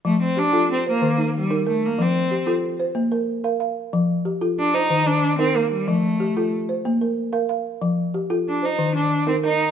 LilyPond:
<<
  \new Staff \with { instrumentName = "Balafon" } { \time 12/8 \key f \mixolydian \tempo 4. = 124 << { r4 g'8 a'4 c''4 ees'4 bes'8 bes'4~ | bes'8 r8 g'8 a'4 c''4 bes'4 f''8 f''4~ | f''8 r8 g'8 a'4 c''4 ees4 bes'8 bes'4~ | bes'8 r8 g'8 a'4 c''4 bes'4 f''8 f''4~ |
f''8 r8 g'8 a'4 c''4 ees4 bes'8 bes'4 | } \\ { f4 r8 f'4 r8 ees4 r8 ees'4 r8 | f4 r8 f'4 r8 bes4 r8 bes'4 r8 | f4 r8 f'4 r8 ees4 r8 ees'4 r8 | f4 r8 f'4 r8 bes4 r8 bes'4 r8 |
f4 r8 f'4 r8 ees4 r8 ees'4 r8 | } >> }
  \new Staff \with { instrumentName = "Cello" } { \time 12/8 \key f \mixolydian a8 c'8 d'4 c'8 bes4. g4 a8 bes8 | c'4. r1 r8 | r2 d'8 ees'4 d'4 c'8 bes8 g8 | a2 r1 |
r2 d'8 ees'4 d'4 c'8 ees'4 | }
>>